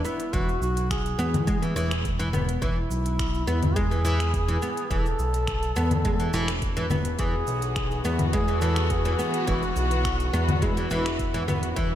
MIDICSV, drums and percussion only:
0, 0, Header, 1, 2, 480
1, 0, Start_track
1, 0, Key_signature, 4, "major"
1, 0, Tempo, 571429
1, 281, Time_signature, 4, 2, 24, 8
1, 10038, End_track
2, 0, Start_track
2, 0, Title_t, "Drums"
2, 42, Note_on_c, 9, 82, 79
2, 126, Note_off_c, 9, 82, 0
2, 165, Note_on_c, 9, 42, 45
2, 167, Note_on_c, 9, 82, 33
2, 249, Note_off_c, 9, 42, 0
2, 251, Note_off_c, 9, 82, 0
2, 282, Note_on_c, 9, 36, 110
2, 283, Note_on_c, 9, 42, 53
2, 285, Note_on_c, 9, 82, 44
2, 366, Note_off_c, 9, 36, 0
2, 367, Note_off_c, 9, 42, 0
2, 369, Note_off_c, 9, 82, 0
2, 409, Note_on_c, 9, 82, 29
2, 493, Note_off_c, 9, 82, 0
2, 525, Note_on_c, 9, 82, 75
2, 609, Note_off_c, 9, 82, 0
2, 647, Note_on_c, 9, 42, 47
2, 648, Note_on_c, 9, 82, 36
2, 731, Note_off_c, 9, 42, 0
2, 732, Note_off_c, 9, 82, 0
2, 762, Note_on_c, 9, 36, 113
2, 763, Note_on_c, 9, 26, 77
2, 763, Note_on_c, 9, 42, 53
2, 765, Note_on_c, 9, 82, 46
2, 846, Note_off_c, 9, 36, 0
2, 847, Note_off_c, 9, 26, 0
2, 847, Note_off_c, 9, 42, 0
2, 849, Note_off_c, 9, 82, 0
2, 889, Note_on_c, 9, 42, 31
2, 891, Note_on_c, 9, 82, 32
2, 973, Note_off_c, 9, 42, 0
2, 975, Note_off_c, 9, 82, 0
2, 1003, Note_on_c, 9, 82, 79
2, 1087, Note_off_c, 9, 82, 0
2, 1128, Note_on_c, 9, 42, 43
2, 1128, Note_on_c, 9, 64, 60
2, 1130, Note_on_c, 9, 82, 37
2, 1212, Note_off_c, 9, 42, 0
2, 1212, Note_off_c, 9, 64, 0
2, 1214, Note_off_c, 9, 82, 0
2, 1241, Note_on_c, 9, 36, 111
2, 1242, Note_on_c, 9, 42, 58
2, 1243, Note_on_c, 9, 82, 45
2, 1325, Note_off_c, 9, 36, 0
2, 1326, Note_off_c, 9, 42, 0
2, 1327, Note_off_c, 9, 82, 0
2, 1367, Note_on_c, 9, 42, 32
2, 1368, Note_on_c, 9, 82, 34
2, 1451, Note_off_c, 9, 42, 0
2, 1452, Note_off_c, 9, 82, 0
2, 1483, Note_on_c, 9, 82, 84
2, 1567, Note_off_c, 9, 82, 0
2, 1607, Note_on_c, 9, 26, 88
2, 1607, Note_on_c, 9, 42, 44
2, 1609, Note_on_c, 9, 82, 35
2, 1691, Note_off_c, 9, 26, 0
2, 1691, Note_off_c, 9, 42, 0
2, 1693, Note_off_c, 9, 82, 0
2, 1722, Note_on_c, 9, 36, 103
2, 1723, Note_on_c, 9, 42, 54
2, 1725, Note_on_c, 9, 82, 45
2, 1806, Note_off_c, 9, 36, 0
2, 1807, Note_off_c, 9, 42, 0
2, 1809, Note_off_c, 9, 82, 0
2, 1848, Note_on_c, 9, 42, 33
2, 1850, Note_on_c, 9, 82, 33
2, 1932, Note_off_c, 9, 42, 0
2, 1934, Note_off_c, 9, 82, 0
2, 1962, Note_on_c, 9, 64, 64
2, 1964, Note_on_c, 9, 82, 81
2, 2046, Note_off_c, 9, 64, 0
2, 2048, Note_off_c, 9, 82, 0
2, 2089, Note_on_c, 9, 42, 49
2, 2091, Note_on_c, 9, 82, 33
2, 2173, Note_off_c, 9, 42, 0
2, 2175, Note_off_c, 9, 82, 0
2, 2202, Note_on_c, 9, 36, 111
2, 2204, Note_on_c, 9, 42, 55
2, 2206, Note_on_c, 9, 82, 46
2, 2286, Note_off_c, 9, 36, 0
2, 2288, Note_off_c, 9, 42, 0
2, 2290, Note_off_c, 9, 82, 0
2, 2445, Note_on_c, 9, 82, 84
2, 2529, Note_off_c, 9, 82, 0
2, 2568, Note_on_c, 9, 42, 43
2, 2570, Note_on_c, 9, 82, 36
2, 2652, Note_off_c, 9, 42, 0
2, 2654, Note_off_c, 9, 82, 0
2, 2683, Note_on_c, 9, 26, 78
2, 2683, Note_on_c, 9, 36, 118
2, 2683, Note_on_c, 9, 42, 54
2, 2685, Note_on_c, 9, 82, 47
2, 2767, Note_off_c, 9, 26, 0
2, 2767, Note_off_c, 9, 36, 0
2, 2767, Note_off_c, 9, 42, 0
2, 2769, Note_off_c, 9, 82, 0
2, 2808, Note_on_c, 9, 82, 32
2, 2892, Note_off_c, 9, 82, 0
2, 2922, Note_on_c, 9, 82, 82
2, 3006, Note_off_c, 9, 82, 0
2, 3046, Note_on_c, 9, 42, 46
2, 3046, Note_on_c, 9, 64, 58
2, 3048, Note_on_c, 9, 82, 37
2, 3130, Note_off_c, 9, 42, 0
2, 3130, Note_off_c, 9, 64, 0
2, 3132, Note_off_c, 9, 82, 0
2, 3163, Note_on_c, 9, 36, 110
2, 3163, Note_on_c, 9, 42, 52
2, 3165, Note_on_c, 9, 82, 44
2, 3247, Note_off_c, 9, 36, 0
2, 3247, Note_off_c, 9, 42, 0
2, 3249, Note_off_c, 9, 82, 0
2, 3290, Note_on_c, 9, 82, 35
2, 3374, Note_off_c, 9, 82, 0
2, 3405, Note_on_c, 9, 82, 89
2, 3489, Note_off_c, 9, 82, 0
2, 3529, Note_on_c, 9, 26, 83
2, 3529, Note_on_c, 9, 42, 45
2, 3531, Note_on_c, 9, 82, 38
2, 3613, Note_off_c, 9, 26, 0
2, 3613, Note_off_c, 9, 42, 0
2, 3615, Note_off_c, 9, 82, 0
2, 3643, Note_on_c, 9, 36, 104
2, 3645, Note_on_c, 9, 42, 54
2, 3646, Note_on_c, 9, 82, 46
2, 3727, Note_off_c, 9, 36, 0
2, 3729, Note_off_c, 9, 42, 0
2, 3730, Note_off_c, 9, 82, 0
2, 3769, Note_on_c, 9, 42, 33
2, 3770, Note_on_c, 9, 82, 35
2, 3853, Note_off_c, 9, 42, 0
2, 3854, Note_off_c, 9, 82, 0
2, 3884, Note_on_c, 9, 82, 84
2, 3968, Note_off_c, 9, 82, 0
2, 4010, Note_on_c, 9, 42, 42
2, 4012, Note_on_c, 9, 82, 34
2, 4094, Note_off_c, 9, 42, 0
2, 4096, Note_off_c, 9, 82, 0
2, 4123, Note_on_c, 9, 36, 106
2, 4124, Note_on_c, 9, 42, 52
2, 4126, Note_on_c, 9, 82, 46
2, 4207, Note_off_c, 9, 36, 0
2, 4208, Note_off_c, 9, 42, 0
2, 4210, Note_off_c, 9, 82, 0
2, 4249, Note_on_c, 9, 82, 29
2, 4333, Note_off_c, 9, 82, 0
2, 4362, Note_on_c, 9, 82, 83
2, 4446, Note_off_c, 9, 82, 0
2, 4486, Note_on_c, 9, 42, 40
2, 4488, Note_on_c, 9, 82, 35
2, 4570, Note_off_c, 9, 42, 0
2, 4572, Note_off_c, 9, 82, 0
2, 4599, Note_on_c, 9, 26, 74
2, 4599, Note_on_c, 9, 42, 50
2, 4600, Note_on_c, 9, 82, 44
2, 4602, Note_on_c, 9, 36, 114
2, 4683, Note_off_c, 9, 26, 0
2, 4683, Note_off_c, 9, 42, 0
2, 4684, Note_off_c, 9, 82, 0
2, 4686, Note_off_c, 9, 36, 0
2, 4726, Note_on_c, 9, 42, 31
2, 4728, Note_on_c, 9, 82, 34
2, 4810, Note_off_c, 9, 42, 0
2, 4812, Note_off_c, 9, 82, 0
2, 4841, Note_on_c, 9, 82, 84
2, 4925, Note_off_c, 9, 82, 0
2, 4965, Note_on_c, 9, 42, 44
2, 4965, Note_on_c, 9, 64, 57
2, 4967, Note_on_c, 9, 82, 37
2, 5049, Note_off_c, 9, 42, 0
2, 5049, Note_off_c, 9, 64, 0
2, 5051, Note_off_c, 9, 82, 0
2, 5080, Note_on_c, 9, 42, 51
2, 5082, Note_on_c, 9, 36, 116
2, 5082, Note_on_c, 9, 82, 43
2, 5164, Note_off_c, 9, 42, 0
2, 5166, Note_off_c, 9, 36, 0
2, 5166, Note_off_c, 9, 82, 0
2, 5205, Note_on_c, 9, 42, 31
2, 5207, Note_on_c, 9, 82, 33
2, 5289, Note_off_c, 9, 42, 0
2, 5291, Note_off_c, 9, 82, 0
2, 5321, Note_on_c, 9, 82, 84
2, 5405, Note_off_c, 9, 82, 0
2, 5445, Note_on_c, 9, 26, 82
2, 5445, Note_on_c, 9, 42, 44
2, 5447, Note_on_c, 9, 82, 36
2, 5529, Note_off_c, 9, 26, 0
2, 5529, Note_off_c, 9, 42, 0
2, 5531, Note_off_c, 9, 82, 0
2, 5561, Note_on_c, 9, 42, 52
2, 5562, Note_on_c, 9, 36, 101
2, 5563, Note_on_c, 9, 82, 47
2, 5645, Note_off_c, 9, 42, 0
2, 5646, Note_off_c, 9, 36, 0
2, 5647, Note_off_c, 9, 82, 0
2, 5685, Note_on_c, 9, 42, 32
2, 5687, Note_on_c, 9, 82, 34
2, 5769, Note_off_c, 9, 42, 0
2, 5771, Note_off_c, 9, 82, 0
2, 5799, Note_on_c, 9, 64, 58
2, 5800, Note_on_c, 9, 82, 84
2, 5883, Note_off_c, 9, 64, 0
2, 5884, Note_off_c, 9, 82, 0
2, 5921, Note_on_c, 9, 42, 44
2, 5923, Note_on_c, 9, 82, 34
2, 6005, Note_off_c, 9, 42, 0
2, 6007, Note_off_c, 9, 82, 0
2, 6036, Note_on_c, 9, 42, 49
2, 6038, Note_on_c, 9, 82, 43
2, 6042, Note_on_c, 9, 36, 103
2, 6120, Note_off_c, 9, 42, 0
2, 6122, Note_off_c, 9, 82, 0
2, 6126, Note_off_c, 9, 36, 0
2, 6278, Note_on_c, 9, 82, 76
2, 6362, Note_off_c, 9, 82, 0
2, 6402, Note_on_c, 9, 42, 42
2, 6404, Note_on_c, 9, 82, 34
2, 6486, Note_off_c, 9, 42, 0
2, 6488, Note_off_c, 9, 82, 0
2, 6518, Note_on_c, 9, 26, 73
2, 6518, Note_on_c, 9, 42, 53
2, 6520, Note_on_c, 9, 82, 44
2, 6523, Note_on_c, 9, 36, 110
2, 6602, Note_off_c, 9, 26, 0
2, 6602, Note_off_c, 9, 42, 0
2, 6604, Note_off_c, 9, 82, 0
2, 6607, Note_off_c, 9, 36, 0
2, 6646, Note_on_c, 9, 82, 31
2, 6730, Note_off_c, 9, 82, 0
2, 6760, Note_on_c, 9, 82, 78
2, 6844, Note_off_c, 9, 82, 0
2, 6881, Note_on_c, 9, 42, 46
2, 6881, Note_on_c, 9, 64, 63
2, 6883, Note_on_c, 9, 82, 35
2, 6965, Note_off_c, 9, 42, 0
2, 6965, Note_off_c, 9, 64, 0
2, 6967, Note_off_c, 9, 82, 0
2, 6999, Note_on_c, 9, 42, 53
2, 7000, Note_on_c, 9, 82, 42
2, 7002, Note_on_c, 9, 36, 107
2, 7083, Note_off_c, 9, 42, 0
2, 7084, Note_off_c, 9, 82, 0
2, 7086, Note_off_c, 9, 36, 0
2, 7124, Note_on_c, 9, 82, 33
2, 7208, Note_off_c, 9, 82, 0
2, 7238, Note_on_c, 9, 82, 82
2, 7322, Note_off_c, 9, 82, 0
2, 7361, Note_on_c, 9, 26, 80
2, 7361, Note_on_c, 9, 42, 44
2, 7363, Note_on_c, 9, 82, 35
2, 7445, Note_off_c, 9, 26, 0
2, 7445, Note_off_c, 9, 42, 0
2, 7447, Note_off_c, 9, 82, 0
2, 7477, Note_on_c, 9, 42, 54
2, 7479, Note_on_c, 9, 82, 45
2, 7482, Note_on_c, 9, 36, 101
2, 7561, Note_off_c, 9, 42, 0
2, 7563, Note_off_c, 9, 82, 0
2, 7566, Note_off_c, 9, 36, 0
2, 7606, Note_on_c, 9, 42, 33
2, 7608, Note_on_c, 9, 82, 32
2, 7690, Note_off_c, 9, 42, 0
2, 7692, Note_off_c, 9, 82, 0
2, 7721, Note_on_c, 9, 82, 80
2, 7805, Note_off_c, 9, 82, 0
2, 7844, Note_on_c, 9, 42, 45
2, 7846, Note_on_c, 9, 82, 33
2, 7928, Note_off_c, 9, 42, 0
2, 7930, Note_off_c, 9, 82, 0
2, 7960, Note_on_c, 9, 42, 53
2, 7962, Note_on_c, 9, 36, 102
2, 7962, Note_on_c, 9, 82, 44
2, 8044, Note_off_c, 9, 42, 0
2, 8046, Note_off_c, 9, 36, 0
2, 8046, Note_off_c, 9, 82, 0
2, 8086, Note_on_c, 9, 82, 30
2, 8170, Note_off_c, 9, 82, 0
2, 8201, Note_on_c, 9, 82, 80
2, 8285, Note_off_c, 9, 82, 0
2, 8325, Note_on_c, 9, 42, 44
2, 8327, Note_on_c, 9, 82, 31
2, 8409, Note_off_c, 9, 42, 0
2, 8411, Note_off_c, 9, 82, 0
2, 8442, Note_on_c, 9, 26, 71
2, 8442, Note_on_c, 9, 36, 109
2, 8442, Note_on_c, 9, 42, 50
2, 8444, Note_on_c, 9, 82, 43
2, 8526, Note_off_c, 9, 26, 0
2, 8526, Note_off_c, 9, 36, 0
2, 8526, Note_off_c, 9, 42, 0
2, 8528, Note_off_c, 9, 82, 0
2, 8568, Note_on_c, 9, 42, 31
2, 8570, Note_on_c, 9, 82, 30
2, 8652, Note_off_c, 9, 42, 0
2, 8654, Note_off_c, 9, 82, 0
2, 8686, Note_on_c, 9, 82, 78
2, 8770, Note_off_c, 9, 82, 0
2, 8808, Note_on_c, 9, 42, 44
2, 8808, Note_on_c, 9, 64, 62
2, 8810, Note_on_c, 9, 82, 34
2, 8892, Note_off_c, 9, 42, 0
2, 8892, Note_off_c, 9, 64, 0
2, 8894, Note_off_c, 9, 82, 0
2, 8922, Note_on_c, 9, 42, 54
2, 8923, Note_on_c, 9, 36, 108
2, 8924, Note_on_c, 9, 82, 40
2, 9006, Note_off_c, 9, 42, 0
2, 9007, Note_off_c, 9, 36, 0
2, 9008, Note_off_c, 9, 82, 0
2, 9049, Note_on_c, 9, 42, 32
2, 9051, Note_on_c, 9, 82, 33
2, 9133, Note_off_c, 9, 42, 0
2, 9135, Note_off_c, 9, 82, 0
2, 9163, Note_on_c, 9, 82, 80
2, 9247, Note_off_c, 9, 82, 0
2, 9289, Note_on_c, 9, 26, 77
2, 9289, Note_on_c, 9, 42, 45
2, 9291, Note_on_c, 9, 82, 33
2, 9373, Note_off_c, 9, 26, 0
2, 9373, Note_off_c, 9, 42, 0
2, 9375, Note_off_c, 9, 82, 0
2, 9403, Note_on_c, 9, 42, 55
2, 9404, Note_on_c, 9, 36, 93
2, 9405, Note_on_c, 9, 82, 44
2, 9487, Note_off_c, 9, 42, 0
2, 9488, Note_off_c, 9, 36, 0
2, 9489, Note_off_c, 9, 82, 0
2, 9530, Note_on_c, 9, 42, 35
2, 9531, Note_on_c, 9, 82, 30
2, 9614, Note_off_c, 9, 42, 0
2, 9615, Note_off_c, 9, 82, 0
2, 9645, Note_on_c, 9, 64, 66
2, 9647, Note_on_c, 9, 82, 75
2, 9729, Note_off_c, 9, 64, 0
2, 9731, Note_off_c, 9, 82, 0
2, 9768, Note_on_c, 9, 42, 45
2, 9770, Note_on_c, 9, 82, 34
2, 9852, Note_off_c, 9, 42, 0
2, 9854, Note_off_c, 9, 82, 0
2, 9883, Note_on_c, 9, 42, 59
2, 9884, Note_on_c, 9, 36, 98
2, 9885, Note_on_c, 9, 82, 39
2, 9967, Note_off_c, 9, 42, 0
2, 9968, Note_off_c, 9, 36, 0
2, 9969, Note_off_c, 9, 82, 0
2, 10038, End_track
0, 0, End_of_file